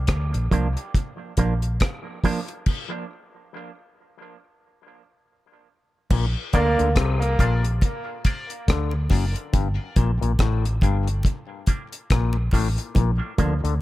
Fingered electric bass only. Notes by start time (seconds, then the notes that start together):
0.09 D2
0.35 A#1
0.52 C2
1.38 A#1
6.11 A#1
6.54 D2
6.80 D2
7.39 A#1
8.69 D2
9.11 F#1
9.54 G1
9.97 A#1
10.22 A#1
10.40 A1
10.82 G1
12.11 A#1
12.53 A1
12.96 A#1
13.39 D2
13.64 D2